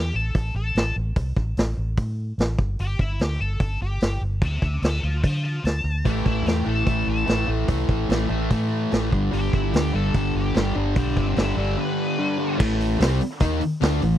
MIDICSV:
0, 0, Header, 1, 7, 480
1, 0, Start_track
1, 0, Key_signature, 0, "minor"
1, 0, Tempo, 408163
1, 1358, Time_signature, 4, 2, 24, 8
1, 16676, End_track
2, 0, Start_track
2, 0, Title_t, "Lead electric guitar"
2, 0, Program_c, 0, 29
2, 0, Note_on_c, 0, 67, 71
2, 169, Note_off_c, 0, 67, 0
2, 185, Note_on_c, 0, 69, 62
2, 638, Note_off_c, 0, 69, 0
2, 658, Note_on_c, 0, 69, 68
2, 1113, Note_off_c, 0, 69, 0
2, 3298, Note_on_c, 0, 67, 81
2, 3520, Note_off_c, 0, 67, 0
2, 3540, Note_on_c, 0, 64, 74
2, 3761, Note_off_c, 0, 64, 0
2, 3783, Note_on_c, 0, 67, 70
2, 4003, Note_off_c, 0, 67, 0
2, 4015, Note_on_c, 0, 69, 78
2, 4472, Note_off_c, 0, 69, 0
2, 4491, Note_on_c, 0, 67, 82
2, 4950, Note_off_c, 0, 67, 0
2, 5214, Note_on_c, 0, 72, 74
2, 5223, Note_on_c, 0, 76, 95
2, 5426, Note_off_c, 0, 72, 0
2, 5440, Note_on_c, 0, 72, 72
2, 5444, Note_off_c, 0, 76, 0
2, 5456, Note_on_c, 0, 76, 84
2, 5662, Note_off_c, 0, 72, 0
2, 5677, Note_on_c, 0, 72, 67
2, 5680, Note_off_c, 0, 76, 0
2, 5693, Note_on_c, 0, 76, 81
2, 5901, Note_off_c, 0, 72, 0
2, 5919, Note_off_c, 0, 76, 0
2, 5925, Note_on_c, 0, 72, 66
2, 5933, Note_on_c, 0, 81, 66
2, 6135, Note_off_c, 0, 72, 0
2, 6140, Note_off_c, 0, 81, 0
2, 6149, Note_on_c, 0, 72, 65
2, 6154, Note_on_c, 0, 81, 78
2, 6377, Note_off_c, 0, 72, 0
2, 6389, Note_off_c, 0, 81, 0
2, 6409, Note_on_c, 0, 72, 70
2, 6417, Note_on_c, 0, 81, 74
2, 6628, Note_off_c, 0, 72, 0
2, 6635, Note_off_c, 0, 81, 0
2, 6649, Note_on_c, 0, 81, 80
2, 7110, Note_off_c, 0, 81, 0
2, 7118, Note_on_c, 0, 67, 84
2, 7352, Note_off_c, 0, 67, 0
2, 7376, Note_on_c, 0, 64, 72
2, 7602, Note_off_c, 0, 64, 0
2, 7617, Note_on_c, 0, 67, 63
2, 7842, Note_off_c, 0, 67, 0
2, 7861, Note_on_c, 0, 69, 64
2, 8318, Note_off_c, 0, 69, 0
2, 8342, Note_on_c, 0, 69, 74
2, 8799, Note_off_c, 0, 69, 0
2, 10981, Note_on_c, 0, 67, 80
2, 11208, Note_off_c, 0, 67, 0
2, 11225, Note_on_c, 0, 64, 73
2, 11451, Note_off_c, 0, 64, 0
2, 11479, Note_on_c, 0, 67, 85
2, 11698, Note_off_c, 0, 67, 0
2, 11713, Note_on_c, 0, 69, 75
2, 12168, Note_off_c, 0, 69, 0
2, 12189, Note_on_c, 0, 67, 78
2, 12647, Note_off_c, 0, 67, 0
2, 12917, Note_on_c, 0, 71, 78
2, 12929, Note_on_c, 0, 79, 80
2, 13129, Note_off_c, 0, 71, 0
2, 13144, Note_off_c, 0, 79, 0
2, 13148, Note_on_c, 0, 67, 79
2, 13154, Note_on_c, 0, 76, 79
2, 13364, Note_off_c, 0, 67, 0
2, 13377, Note_off_c, 0, 76, 0
2, 13394, Note_on_c, 0, 67, 76
2, 13400, Note_on_c, 0, 76, 86
2, 13607, Note_off_c, 0, 67, 0
2, 13620, Note_off_c, 0, 76, 0
2, 13633, Note_on_c, 0, 67, 63
2, 13640, Note_on_c, 0, 76, 83
2, 13847, Note_off_c, 0, 67, 0
2, 13860, Note_off_c, 0, 76, 0
2, 13875, Note_on_c, 0, 71, 97
2, 14795, Note_off_c, 0, 71, 0
2, 16676, End_track
3, 0, Start_track
3, 0, Title_t, "Distorted electric guitar"
3, 0, Program_c, 1, 30
3, 7111, Note_on_c, 1, 45, 76
3, 7116, Note_on_c, 1, 52, 98
3, 7123, Note_on_c, 1, 57, 94
3, 7588, Note_off_c, 1, 45, 0
3, 7589, Note_off_c, 1, 52, 0
3, 7593, Note_on_c, 1, 45, 71
3, 7594, Note_on_c, 1, 52, 71
3, 7599, Note_off_c, 1, 57, 0
3, 7604, Note_on_c, 1, 57, 77
3, 7805, Note_off_c, 1, 45, 0
3, 7819, Note_on_c, 1, 45, 68
3, 7820, Note_off_c, 1, 52, 0
3, 7820, Note_off_c, 1, 57, 0
3, 7834, Note_on_c, 1, 52, 75
3, 7834, Note_on_c, 1, 57, 77
3, 8049, Note_off_c, 1, 45, 0
3, 8055, Note_off_c, 1, 52, 0
3, 8063, Note_on_c, 1, 45, 83
3, 8064, Note_off_c, 1, 57, 0
3, 8069, Note_on_c, 1, 52, 91
3, 8078, Note_on_c, 1, 57, 96
3, 8533, Note_off_c, 1, 45, 0
3, 8539, Note_off_c, 1, 52, 0
3, 8547, Note_off_c, 1, 57, 0
3, 8547, Note_on_c, 1, 45, 74
3, 8553, Note_on_c, 1, 52, 78
3, 8561, Note_on_c, 1, 57, 77
3, 8773, Note_off_c, 1, 45, 0
3, 8783, Note_off_c, 1, 52, 0
3, 8787, Note_off_c, 1, 57, 0
3, 8787, Note_on_c, 1, 45, 68
3, 8797, Note_on_c, 1, 52, 71
3, 8801, Note_on_c, 1, 57, 87
3, 9018, Note_off_c, 1, 45, 0
3, 9025, Note_off_c, 1, 52, 0
3, 9032, Note_off_c, 1, 57, 0
3, 9032, Note_on_c, 1, 45, 82
3, 9039, Note_on_c, 1, 52, 89
3, 9046, Note_on_c, 1, 57, 88
3, 9508, Note_off_c, 1, 45, 0
3, 9512, Note_off_c, 1, 52, 0
3, 9519, Note_off_c, 1, 57, 0
3, 9523, Note_on_c, 1, 45, 73
3, 9526, Note_on_c, 1, 52, 77
3, 9533, Note_on_c, 1, 57, 86
3, 9738, Note_off_c, 1, 45, 0
3, 9742, Note_off_c, 1, 52, 0
3, 9752, Note_off_c, 1, 57, 0
3, 9752, Note_on_c, 1, 45, 70
3, 9756, Note_on_c, 1, 52, 63
3, 9766, Note_on_c, 1, 57, 80
3, 9988, Note_off_c, 1, 45, 0
3, 9996, Note_off_c, 1, 52, 0
3, 9999, Note_off_c, 1, 57, 0
3, 10002, Note_on_c, 1, 45, 95
3, 10010, Note_on_c, 1, 52, 91
3, 10013, Note_on_c, 1, 57, 93
3, 10472, Note_off_c, 1, 45, 0
3, 10478, Note_off_c, 1, 52, 0
3, 10483, Note_off_c, 1, 57, 0
3, 10486, Note_on_c, 1, 45, 64
3, 10492, Note_on_c, 1, 52, 75
3, 10497, Note_on_c, 1, 57, 84
3, 10712, Note_off_c, 1, 45, 0
3, 10712, Note_on_c, 1, 43, 81
3, 10716, Note_off_c, 1, 52, 0
3, 10716, Note_on_c, 1, 50, 89
3, 10718, Note_off_c, 1, 57, 0
3, 10724, Note_on_c, 1, 55, 91
3, 10948, Note_off_c, 1, 43, 0
3, 10948, Note_off_c, 1, 50, 0
3, 10953, Note_on_c, 1, 43, 90
3, 10962, Note_on_c, 1, 50, 96
3, 10964, Note_off_c, 1, 55, 0
3, 10969, Note_on_c, 1, 55, 91
3, 11435, Note_off_c, 1, 50, 0
3, 11440, Note_off_c, 1, 43, 0
3, 11445, Note_on_c, 1, 43, 65
3, 11449, Note_on_c, 1, 50, 84
3, 11452, Note_off_c, 1, 55, 0
3, 11457, Note_on_c, 1, 55, 87
3, 11677, Note_off_c, 1, 43, 0
3, 11677, Note_off_c, 1, 50, 0
3, 11681, Note_on_c, 1, 43, 68
3, 11690, Note_off_c, 1, 55, 0
3, 11691, Note_on_c, 1, 50, 75
3, 11695, Note_on_c, 1, 55, 77
3, 11921, Note_off_c, 1, 43, 0
3, 11929, Note_off_c, 1, 50, 0
3, 11932, Note_off_c, 1, 55, 0
3, 11935, Note_on_c, 1, 43, 92
3, 11943, Note_on_c, 1, 50, 95
3, 11946, Note_on_c, 1, 55, 100
3, 12392, Note_off_c, 1, 43, 0
3, 12401, Note_off_c, 1, 50, 0
3, 12404, Note_off_c, 1, 55, 0
3, 12406, Note_on_c, 1, 43, 72
3, 12415, Note_on_c, 1, 50, 75
3, 12418, Note_on_c, 1, 55, 76
3, 12635, Note_off_c, 1, 43, 0
3, 12639, Note_off_c, 1, 50, 0
3, 12649, Note_on_c, 1, 43, 71
3, 12650, Note_off_c, 1, 55, 0
3, 12653, Note_on_c, 1, 50, 75
3, 12664, Note_on_c, 1, 55, 81
3, 12876, Note_off_c, 1, 43, 0
3, 12880, Note_off_c, 1, 50, 0
3, 12886, Note_off_c, 1, 55, 0
3, 12890, Note_on_c, 1, 43, 98
3, 12894, Note_on_c, 1, 50, 89
3, 12901, Note_on_c, 1, 55, 96
3, 13358, Note_off_c, 1, 43, 0
3, 13367, Note_off_c, 1, 50, 0
3, 13373, Note_on_c, 1, 43, 70
3, 13374, Note_off_c, 1, 55, 0
3, 13381, Note_on_c, 1, 50, 75
3, 13388, Note_on_c, 1, 55, 86
3, 13589, Note_off_c, 1, 43, 0
3, 13599, Note_off_c, 1, 50, 0
3, 13603, Note_on_c, 1, 43, 74
3, 13604, Note_off_c, 1, 55, 0
3, 13613, Note_on_c, 1, 50, 70
3, 13618, Note_on_c, 1, 55, 81
3, 13833, Note_off_c, 1, 43, 0
3, 13838, Note_off_c, 1, 50, 0
3, 13844, Note_off_c, 1, 55, 0
3, 13847, Note_on_c, 1, 43, 88
3, 13852, Note_on_c, 1, 50, 91
3, 13858, Note_on_c, 1, 55, 95
3, 14313, Note_off_c, 1, 43, 0
3, 14317, Note_off_c, 1, 50, 0
3, 14322, Note_off_c, 1, 55, 0
3, 14327, Note_on_c, 1, 43, 76
3, 14331, Note_on_c, 1, 50, 77
3, 14336, Note_on_c, 1, 55, 80
3, 14547, Note_off_c, 1, 43, 0
3, 14555, Note_off_c, 1, 50, 0
3, 14562, Note_on_c, 1, 43, 72
3, 14563, Note_off_c, 1, 55, 0
3, 14569, Note_on_c, 1, 50, 82
3, 14577, Note_on_c, 1, 55, 86
3, 14792, Note_off_c, 1, 43, 0
3, 14796, Note_off_c, 1, 50, 0
3, 14800, Note_off_c, 1, 55, 0
3, 14801, Note_on_c, 1, 45, 100
3, 14807, Note_on_c, 1, 52, 92
3, 14812, Note_on_c, 1, 57, 108
3, 15278, Note_off_c, 1, 45, 0
3, 15282, Note_off_c, 1, 52, 0
3, 15284, Note_off_c, 1, 57, 0
3, 15285, Note_on_c, 1, 48, 94
3, 15294, Note_on_c, 1, 55, 103
3, 15297, Note_on_c, 1, 60, 100
3, 15521, Note_off_c, 1, 48, 0
3, 15525, Note_off_c, 1, 55, 0
3, 15526, Note_off_c, 1, 60, 0
3, 15762, Note_on_c, 1, 51, 98
3, 15772, Note_on_c, 1, 58, 100
3, 15776, Note_on_c, 1, 63, 101
3, 15995, Note_off_c, 1, 51, 0
3, 16003, Note_off_c, 1, 58, 0
3, 16005, Note_off_c, 1, 63, 0
3, 16237, Note_on_c, 1, 50, 88
3, 16246, Note_on_c, 1, 57, 93
3, 16251, Note_on_c, 1, 62, 107
3, 16474, Note_off_c, 1, 50, 0
3, 16479, Note_off_c, 1, 57, 0
3, 16481, Note_off_c, 1, 62, 0
3, 16487, Note_on_c, 1, 45, 69
3, 16489, Note_on_c, 1, 52, 69
3, 16676, Note_off_c, 1, 45, 0
3, 16676, Note_off_c, 1, 52, 0
3, 16676, End_track
4, 0, Start_track
4, 0, Title_t, "Fingered electric bass"
4, 0, Program_c, 2, 33
4, 0, Note_on_c, 2, 40, 81
4, 125, Note_off_c, 2, 40, 0
4, 166, Note_on_c, 2, 33, 73
4, 365, Note_off_c, 2, 33, 0
4, 410, Note_on_c, 2, 33, 72
4, 607, Note_off_c, 2, 33, 0
4, 640, Note_on_c, 2, 33, 71
4, 841, Note_off_c, 2, 33, 0
4, 882, Note_on_c, 2, 33, 81
4, 1082, Note_off_c, 2, 33, 0
4, 1132, Note_on_c, 2, 33, 76
4, 1327, Note_off_c, 2, 33, 0
4, 1362, Note_on_c, 2, 36, 81
4, 1562, Note_off_c, 2, 36, 0
4, 1604, Note_on_c, 2, 33, 69
4, 1803, Note_off_c, 2, 33, 0
4, 1852, Note_on_c, 2, 33, 81
4, 2047, Note_off_c, 2, 33, 0
4, 2087, Note_on_c, 2, 33, 73
4, 2284, Note_off_c, 2, 33, 0
4, 2325, Note_on_c, 2, 45, 74
4, 2724, Note_off_c, 2, 45, 0
4, 2800, Note_on_c, 2, 33, 83
4, 3000, Note_off_c, 2, 33, 0
4, 3038, Note_on_c, 2, 31, 80
4, 3239, Note_off_c, 2, 31, 0
4, 3289, Note_on_c, 2, 31, 79
4, 3485, Note_off_c, 2, 31, 0
4, 3519, Note_on_c, 2, 31, 75
4, 3719, Note_off_c, 2, 31, 0
4, 3760, Note_on_c, 2, 38, 80
4, 3960, Note_off_c, 2, 38, 0
4, 4002, Note_on_c, 2, 31, 78
4, 4201, Note_off_c, 2, 31, 0
4, 4236, Note_on_c, 2, 31, 77
4, 4438, Note_off_c, 2, 31, 0
4, 4487, Note_on_c, 2, 31, 78
4, 4684, Note_off_c, 2, 31, 0
4, 4724, Note_on_c, 2, 31, 82
4, 4923, Note_off_c, 2, 31, 0
4, 4955, Note_on_c, 2, 31, 74
4, 5157, Note_off_c, 2, 31, 0
4, 5193, Note_on_c, 2, 38, 86
4, 5396, Note_off_c, 2, 38, 0
4, 5434, Note_on_c, 2, 38, 72
4, 5637, Note_off_c, 2, 38, 0
4, 5672, Note_on_c, 2, 38, 82
4, 5876, Note_off_c, 2, 38, 0
4, 5919, Note_on_c, 2, 38, 76
4, 6120, Note_off_c, 2, 38, 0
4, 6162, Note_on_c, 2, 50, 72
4, 6564, Note_off_c, 2, 50, 0
4, 6634, Note_on_c, 2, 38, 78
4, 6838, Note_off_c, 2, 38, 0
4, 6867, Note_on_c, 2, 38, 81
4, 7074, Note_off_c, 2, 38, 0
4, 7116, Note_on_c, 2, 33, 74
4, 7319, Note_off_c, 2, 33, 0
4, 7358, Note_on_c, 2, 33, 75
4, 7561, Note_off_c, 2, 33, 0
4, 7592, Note_on_c, 2, 40, 80
4, 7797, Note_off_c, 2, 40, 0
4, 7837, Note_on_c, 2, 33, 73
4, 8040, Note_off_c, 2, 33, 0
4, 8078, Note_on_c, 2, 33, 69
4, 8281, Note_off_c, 2, 33, 0
4, 8318, Note_on_c, 2, 33, 81
4, 8521, Note_off_c, 2, 33, 0
4, 8560, Note_on_c, 2, 33, 82
4, 8763, Note_off_c, 2, 33, 0
4, 8793, Note_on_c, 2, 33, 79
4, 8999, Note_off_c, 2, 33, 0
4, 9032, Note_on_c, 2, 36, 83
4, 9239, Note_off_c, 2, 36, 0
4, 9274, Note_on_c, 2, 33, 75
4, 9480, Note_off_c, 2, 33, 0
4, 9514, Note_on_c, 2, 33, 84
4, 9720, Note_off_c, 2, 33, 0
4, 9760, Note_on_c, 2, 33, 78
4, 9964, Note_off_c, 2, 33, 0
4, 10001, Note_on_c, 2, 45, 81
4, 10407, Note_off_c, 2, 45, 0
4, 10496, Note_on_c, 2, 33, 82
4, 10694, Note_off_c, 2, 33, 0
4, 10728, Note_on_c, 2, 31, 80
4, 10930, Note_off_c, 2, 31, 0
4, 10970, Note_on_c, 2, 31, 83
4, 11171, Note_off_c, 2, 31, 0
4, 11211, Note_on_c, 2, 31, 78
4, 11412, Note_off_c, 2, 31, 0
4, 11449, Note_on_c, 2, 38, 85
4, 11651, Note_off_c, 2, 38, 0
4, 11687, Note_on_c, 2, 31, 79
4, 11890, Note_off_c, 2, 31, 0
4, 11931, Note_on_c, 2, 31, 81
4, 12132, Note_off_c, 2, 31, 0
4, 12166, Note_on_c, 2, 31, 77
4, 12370, Note_off_c, 2, 31, 0
4, 12409, Note_on_c, 2, 31, 85
4, 12612, Note_off_c, 2, 31, 0
4, 12651, Note_on_c, 2, 31, 82
4, 12853, Note_off_c, 2, 31, 0
4, 12892, Note_on_c, 2, 35, 89
4, 13094, Note_off_c, 2, 35, 0
4, 13133, Note_on_c, 2, 31, 85
4, 13334, Note_off_c, 2, 31, 0
4, 13369, Note_on_c, 2, 31, 76
4, 13572, Note_off_c, 2, 31, 0
4, 13603, Note_on_c, 2, 31, 79
4, 13808, Note_off_c, 2, 31, 0
4, 14816, Note_on_c, 2, 33, 95
4, 15260, Note_off_c, 2, 33, 0
4, 15291, Note_on_c, 2, 36, 96
4, 15514, Note_off_c, 2, 36, 0
4, 15769, Note_on_c, 2, 39, 87
4, 15992, Note_off_c, 2, 39, 0
4, 16250, Note_on_c, 2, 38, 95
4, 16471, Note_off_c, 2, 38, 0
4, 16486, Note_on_c, 2, 33, 83
4, 16676, Note_off_c, 2, 33, 0
4, 16676, End_track
5, 0, Start_track
5, 0, Title_t, "Muted distorted electric guitar strokes"
5, 15999, Note_on_c, 9, 29, 57
5, 16117, Note_off_c, 9, 29, 0
5, 16676, End_track
6, 0, Start_track
6, 0, Title_t, "Muted fingered electric bass strokes"
6, 16010, Note_on_c, 9, 29, 39
6, 16128, Note_off_c, 9, 29, 0
6, 16676, End_track
7, 0, Start_track
7, 0, Title_t, "Drums"
7, 411, Note_on_c, 9, 36, 88
7, 413, Note_on_c, 9, 46, 40
7, 529, Note_off_c, 9, 36, 0
7, 530, Note_off_c, 9, 46, 0
7, 887, Note_on_c, 9, 46, 42
7, 908, Note_on_c, 9, 38, 89
7, 1005, Note_off_c, 9, 46, 0
7, 1026, Note_off_c, 9, 38, 0
7, 1362, Note_on_c, 9, 46, 44
7, 1367, Note_on_c, 9, 36, 85
7, 1480, Note_off_c, 9, 46, 0
7, 1484, Note_off_c, 9, 36, 0
7, 1605, Note_on_c, 9, 36, 73
7, 1722, Note_off_c, 9, 36, 0
7, 1846, Note_on_c, 9, 46, 42
7, 1867, Note_on_c, 9, 38, 91
7, 1963, Note_off_c, 9, 46, 0
7, 1985, Note_off_c, 9, 38, 0
7, 2318, Note_on_c, 9, 46, 45
7, 2323, Note_on_c, 9, 36, 84
7, 2436, Note_off_c, 9, 46, 0
7, 2441, Note_off_c, 9, 36, 0
7, 2805, Note_on_c, 9, 46, 39
7, 2826, Note_on_c, 9, 38, 90
7, 2922, Note_off_c, 9, 46, 0
7, 2944, Note_off_c, 9, 38, 0
7, 3040, Note_on_c, 9, 36, 80
7, 3158, Note_off_c, 9, 36, 0
7, 3280, Note_on_c, 9, 46, 42
7, 3398, Note_off_c, 9, 46, 0
7, 3519, Note_on_c, 9, 36, 73
7, 3637, Note_off_c, 9, 36, 0
7, 3755, Note_on_c, 9, 46, 40
7, 3776, Note_on_c, 9, 38, 95
7, 3873, Note_off_c, 9, 46, 0
7, 3894, Note_off_c, 9, 38, 0
7, 3899, Note_on_c, 9, 38, 29
7, 4017, Note_off_c, 9, 38, 0
7, 4231, Note_on_c, 9, 46, 41
7, 4234, Note_on_c, 9, 36, 96
7, 4349, Note_off_c, 9, 46, 0
7, 4352, Note_off_c, 9, 36, 0
7, 4709, Note_on_c, 9, 46, 39
7, 4730, Note_on_c, 9, 38, 88
7, 4827, Note_off_c, 9, 46, 0
7, 4848, Note_off_c, 9, 38, 0
7, 5194, Note_on_c, 9, 46, 42
7, 5195, Note_on_c, 9, 36, 99
7, 5311, Note_off_c, 9, 46, 0
7, 5313, Note_off_c, 9, 36, 0
7, 5434, Note_on_c, 9, 36, 77
7, 5552, Note_off_c, 9, 36, 0
7, 5674, Note_on_c, 9, 46, 46
7, 5695, Note_on_c, 9, 38, 90
7, 5792, Note_off_c, 9, 46, 0
7, 5813, Note_off_c, 9, 38, 0
7, 6158, Note_on_c, 9, 36, 88
7, 6161, Note_on_c, 9, 46, 43
7, 6275, Note_off_c, 9, 36, 0
7, 6279, Note_off_c, 9, 46, 0
7, 6643, Note_on_c, 9, 46, 47
7, 6664, Note_on_c, 9, 38, 91
7, 6760, Note_off_c, 9, 46, 0
7, 6781, Note_off_c, 9, 38, 0
7, 7119, Note_on_c, 9, 36, 84
7, 7123, Note_on_c, 9, 46, 45
7, 7237, Note_off_c, 9, 36, 0
7, 7241, Note_off_c, 9, 46, 0
7, 7360, Note_on_c, 9, 36, 76
7, 7477, Note_off_c, 9, 36, 0
7, 7600, Note_on_c, 9, 46, 45
7, 7621, Note_on_c, 9, 38, 90
7, 7718, Note_off_c, 9, 46, 0
7, 7739, Note_off_c, 9, 38, 0
7, 8074, Note_on_c, 9, 46, 43
7, 8076, Note_on_c, 9, 36, 89
7, 8192, Note_off_c, 9, 46, 0
7, 8194, Note_off_c, 9, 36, 0
7, 8554, Note_on_c, 9, 46, 43
7, 8575, Note_on_c, 9, 38, 87
7, 8672, Note_off_c, 9, 46, 0
7, 8693, Note_off_c, 9, 38, 0
7, 9031, Note_on_c, 9, 46, 46
7, 9037, Note_on_c, 9, 36, 86
7, 9148, Note_off_c, 9, 46, 0
7, 9155, Note_off_c, 9, 36, 0
7, 9276, Note_on_c, 9, 36, 74
7, 9394, Note_off_c, 9, 36, 0
7, 9522, Note_on_c, 9, 46, 45
7, 9543, Note_on_c, 9, 38, 99
7, 9639, Note_off_c, 9, 46, 0
7, 9660, Note_off_c, 9, 38, 0
7, 10004, Note_on_c, 9, 36, 92
7, 10006, Note_on_c, 9, 46, 44
7, 10122, Note_off_c, 9, 36, 0
7, 10124, Note_off_c, 9, 46, 0
7, 10487, Note_on_c, 9, 46, 44
7, 10508, Note_on_c, 9, 38, 102
7, 10604, Note_off_c, 9, 46, 0
7, 10625, Note_off_c, 9, 38, 0
7, 10730, Note_on_c, 9, 36, 80
7, 10847, Note_off_c, 9, 36, 0
7, 10973, Note_on_c, 9, 46, 46
7, 11091, Note_off_c, 9, 46, 0
7, 11211, Note_on_c, 9, 36, 75
7, 11329, Note_off_c, 9, 36, 0
7, 11451, Note_on_c, 9, 46, 49
7, 11472, Note_on_c, 9, 38, 101
7, 11568, Note_off_c, 9, 46, 0
7, 11589, Note_off_c, 9, 38, 0
7, 11929, Note_on_c, 9, 46, 44
7, 11930, Note_on_c, 9, 36, 99
7, 12047, Note_off_c, 9, 46, 0
7, 12048, Note_off_c, 9, 36, 0
7, 12403, Note_on_c, 9, 46, 39
7, 12424, Note_on_c, 9, 38, 92
7, 12520, Note_off_c, 9, 46, 0
7, 12541, Note_off_c, 9, 38, 0
7, 12883, Note_on_c, 9, 46, 46
7, 12891, Note_on_c, 9, 36, 99
7, 13000, Note_off_c, 9, 46, 0
7, 13009, Note_off_c, 9, 36, 0
7, 13132, Note_on_c, 9, 36, 80
7, 13249, Note_off_c, 9, 36, 0
7, 13363, Note_on_c, 9, 46, 43
7, 13384, Note_on_c, 9, 38, 96
7, 13481, Note_off_c, 9, 46, 0
7, 13502, Note_off_c, 9, 38, 0
7, 14816, Note_on_c, 9, 49, 119
7, 14817, Note_on_c, 9, 36, 99
7, 14934, Note_off_c, 9, 49, 0
7, 14935, Note_off_c, 9, 36, 0
7, 14964, Note_on_c, 9, 38, 32
7, 15060, Note_on_c, 9, 46, 60
7, 15081, Note_off_c, 9, 38, 0
7, 15178, Note_off_c, 9, 46, 0
7, 15293, Note_on_c, 9, 46, 79
7, 15314, Note_on_c, 9, 38, 109
7, 15410, Note_off_c, 9, 46, 0
7, 15432, Note_off_c, 9, 38, 0
7, 15532, Note_on_c, 9, 46, 60
7, 15649, Note_off_c, 9, 46, 0
7, 15758, Note_on_c, 9, 46, 75
7, 15767, Note_on_c, 9, 36, 100
7, 15876, Note_off_c, 9, 46, 0
7, 15884, Note_off_c, 9, 36, 0
7, 16003, Note_on_c, 9, 46, 55
7, 16120, Note_off_c, 9, 46, 0
7, 16246, Note_on_c, 9, 46, 72
7, 16267, Note_on_c, 9, 38, 110
7, 16364, Note_off_c, 9, 46, 0
7, 16385, Note_off_c, 9, 38, 0
7, 16485, Note_on_c, 9, 46, 53
7, 16603, Note_off_c, 9, 46, 0
7, 16676, End_track
0, 0, End_of_file